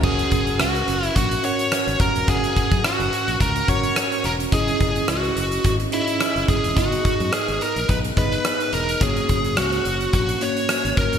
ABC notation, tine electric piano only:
X:1
M:4/4
L:1/8
Q:"Swing 16ths" 1/4=107
K:F#mix
V:1 name="Tine electric piano"
[CFAf]3 z2 [CFAf]2 z | [CFAf]3 z2 [CFAf]2 z | [CEGd]3 z2 [CDEGd]2 z | [B,DGd]3 z2 [B,DGd]2 z |
[A,CFc]3 z2 [A,CFc]2 z |]